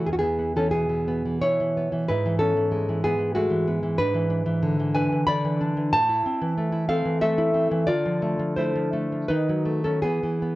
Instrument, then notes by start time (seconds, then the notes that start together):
nylon-string guitar
0.07 E2 G#4
0.13 F#4
0.19 B3 G#4
0.23 E3
0.39 B3
0.56 E3 C#4 A4
0.71 B2 B3 G#4
0.89 E3
1.08 B3
1.25 E3
1.42 B2 E4 C#5
1.60 E3
1.77 B3
1.92 E3
2.08 G#2 E4 B4
2.26 E3
2.39 B3 C#4 A4
2.57 E3
2.72 G#3
2.89 E3
3.04 B3 G#4
3.19 E3
3.35 G#3 A3 F#4
3.50 E3
3.67 B3
3.83 E3
3.98 G#2 D4 B4
4.14 E3
4.30 D4
4.46 E3
4.63 D3
4.80 E3
4.95 D4 B4 G#5
5.12 E3
5.27 D3 D5 B5
5.45 E3
5.61 D4
5.77 E3
5.93 A2 C5 A5
6.09 E4
6.26 C4
6.42 E3
6.58 A3
6.73 E4
6.89 C4 A4 F5
7.06 E3
7.21 A3 A4 E5
7.38 E4
7.54 C4
7.71 E3
7.87 D3 F4 D5
8.06 F3
8.22 A3
8.40 F3
8.57 A3 E4 C5
8.76 F3
8.93 A3
9.12 F3
9.28 D#3 D#4 B4
9.49 F#3
9.65 A3
9.84 F#3 C#4 A4
10.02 E3 B3 G#4
10.23 E3
10.42 B3